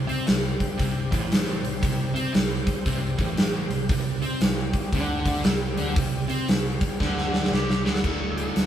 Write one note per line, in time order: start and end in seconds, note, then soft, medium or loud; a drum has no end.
0.00 3.85 G3 medium
0.00 3.85 C4 medium
0.00 3.85 G4 medium
0.00 3.85 C5 medium
0.07 0.27 C3 medium
0.07 0.26 C4 loud
0.07 open hi-hat medium
0.26 0.58 C2 medium
0.26 0.53 C3 medium
0.26 snare loud
0.26 open hi-hat medium
0.60 kick medium
0.60 open hi-hat medium
0.77 1.10 C2 medium
0.77 1.10 C3 loud
0.77 kick medium
0.77 open hi-hat medium
1.11 1.60 A1 medium
1.11 1.62 A2 loud
1.11 kick medium
1.11 open hi-hat medium
1.32 snare loud
1.32 open hi-hat medium
1.63 1.81 C2 medium
1.63 1.78 C3 medium
1.63 open hi-hat medium
1.81 2.13 C2 medium
1.81 2.14 C3 loud
1.81 kick loud
1.81 open hi-hat medium
2.14 2.33 C3 loud
2.14 2.33 C4 loud
2.14 open hi-hat medium
2.33 2.65 C2 medium
2.33 2.60 C3 medium
2.33 snare loud
2.33 open hi-hat medium
2.67 kick medium
2.67 open hi-hat medium
2.86 3.16 C2 medium
2.86 3.16 C3 loud
2.86 kick medium
2.86 open hi-hat medium
3.17 3.67 A1 medium
3.17 3.68 A2 loud
3.17 kick medium
3.17 open hi-hat medium
3.37 snare loud
3.37 open hi-hat medium
3.70 3.88 C2 medium
3.70 3.85 C3 medium
3.70 open hi-hat medium
3.87 4.20 C2 loud
3.87 4.21 C3 loud
3.87 8.00 G3 medium
3.87 8.00 C4 medium
3.87 8.00 G4 medium
3.87 kick loud
3.87 open hi-hat medium
4.22 4.40 C3 medium
4.22 4.40 C4 loud
4.22 open hi-hat medium
4.41 4.71 C2 medium
4.41 4.67 C3 medium
4.41 snare loud
4.41 open hi-hat medium
4.73 kick medium
4.73 open hi-hat medium
4.93 5.41 D2 loud
4.93 5.44 D3 loud
4.93 kick medium
4.93 open hi-hat medium
5.25 kick medium
5.25 open hi-hat medium
5.44 5.75 C2 loud
5.44 5.76 C3 loud
5.44 snare loud
5.44 open hi-hat medium
5.76 5.94 D2 medium
5.76 5.96 D3 medium
5.76 open hi-hat medium
5.96 6.27 C2 medium
5.96 6.28 C3 loud
5.96 kick loud
5.96 open hi-hat medium
6.28 6.47 C3 loud
6.28 6.47 C4 loud
6.28 open hi-hat medium
6.48 6.79 C2 medium
6.48 6.75 C3 medium
6.48 snare loud
6.48 open hi-hat medium
6.81 kick loud
6.81 open hi-hat medium
7.00 7.49 D2 loud
7.00 7.51 D3 loud
7.00 kick medium
7.00 snare medium
7.18 snare medium
7.34 snare medium
7.44 snare medium
7.51 7.83 C2 medium
7.51 7.84 C3 loud
7.51 7.85 G4 medium
7.51 snare medium
7.70 snare medium
7.84 8.03 D2 medium
7.84 8.03 D3 loud
7.84 8.36 A4 medium
7.84 snare medium
7.95 snare medium
8.02 8.48 D1 medium
8.02 8.66 D2 medium
8.02 8.66 A2 medium
8.02 8.66 D3 medium
8.02 8.66 A3 medium
8.02 8.66 D4 medium
8.02 8.66 F#4 medium
8.02 8.66 A4 medium
8.02 kick loud
8.02 crash medium
8.37 8.66 A4 medium
8.37 closed hi-hat medium
8.56 8.66 D1 medium
8.56 snare medium
8.56 closed hi-hat medium